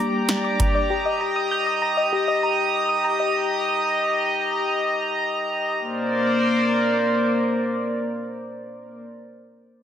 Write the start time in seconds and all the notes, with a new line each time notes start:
Already playing: G3 A#3 D4 G4 D5 A#5 D6
0.29 snare, closed hi-hat
0.44 D6
0.60 A#5, kick, closed hi-hat
0.75 D5
0.90 G4 D#5 D#6
1.05 D#5
1.21 A#5
1.36 D#6
1.51 G6
1.67 D#6
1.82 A#5
1.97 D#5
2.13 G4
2.28 D#5
2.43 A#5
2.89 D#6
3.04 A#5
3.20 D#5
5.80 A#3 A#4 C5 D5